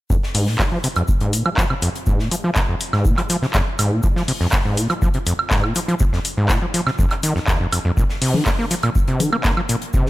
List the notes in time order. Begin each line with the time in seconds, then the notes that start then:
0.10 F2, kick, shaker
0.23 snare
0.34 G#2, open hi-hat
0.47 A#2, snare
0.59 F3, kick, snare, clap, shaker
0.72 F3
0.84 C3, open hi-hat, shaker
0.96 F2, closed hi-hat, high woodblock
1.08 kick, shaker
1.20 G#2, closed hi-hat
1.33 A#2, open hi-hat, shaker
1.46 F3, high woodblock
1.57 F3, kick, snare, clap, shaker
1.70 C3, high woodblock
1.82 F2, open hi-hat, shaker
1.95 closed hi-hat
2.07 G#2, kick, shaker
2.19 A#2, snare
2.31 F3, open hi-hat, shaker
2.44 F3
2.55 C3, kick, snare, clap, shaker
2.69 F2
2.80 open hi-hat, shaker
2.93 G#2, snare, high woodblock
3.05 A#2, kick, shaker
3.17 F3, clap, closed hi-hat, high woodblock
3.29 F3, open hi-hat, shaker
3.42 C3, snare
3.54 F2, kick, snare, clap, shaker
3.79 G#2, open hi-hat, high woodblock, shaker
3.92 A#2
4.03 F3, kick, shaker
4.16 F3, snare
4.28 C3, open hi-hat
4.40 F2, snare
4.52 kick, snare, clap, shaker
4.65 G#2
4.77 A#2, open hi-hat, shaker
4.90 F3, closed hi-hat, high woodblock
5.02 F3, kick, shaker
5.14 C3, closed hi-hat
5.27 F2, open hi-hat, shaker
5.39 high woodblock
5.51 G#2, kick, snare, clap, shaker
5.64 A#2, high woodblock
5.75 F3, open hi-hat, shaker
5.88 F3, closed hi-hat
6.00 C3, kick, shaker
6.13 F2, snare
6.25 open hi-hat, shaker
6.37 G#2
6.49 A#2, kick, snare, clap, shaker
6.62 F3
6.74 F3, open hi-hat, shaker
6.87 C3, snare, high woodblock
6.99 F2, kick, shaker
7.11 clap, closed hi-hat, high woodblock
7.23 D#3, open hi-hat, shaker
7.36 F2, snare
7.47 D#2, kick, snare, clap, shaker
7.60 F2
7.72 F2, open hi-hat, high woodblock, shaker
7.85 F2
7.97 A#2, kick, shaker
8.10 snare
8.22 C3, open hi-hat
8.34 D#3, snare, low conga
8.46 A#3, kick, snare, clap, shaker
8.59 A#3
8.71 F3, open hi-hat, shaker
8.83 A#2, closed hi-hat, high woodblock
8.95 kick, shaker
9.08 C3, closed hi-hat
9.20 D#3, open hi-hat, low conga, shaker
9.33 A#3, high woodblock
9.44 A#3, kick, snare, clap, shaker
9.57 F3, high woodblock
9.69 A#2, open hi-hat, shaker
9.82 closed hi-hat
9.94 C3, kick, shaker
10.06 D#3, snare